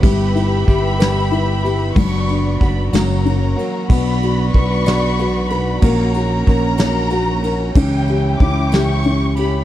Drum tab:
RD |xxxxxx|xxxxxx|xxxxxx|xxxxxx|
SD |---o--|---o--|---o--|---o--|
BD |o-o---|o-o---|o-o---|o-o---|

RD |xxxxxx|
SD |---o--|
BD |o-o---|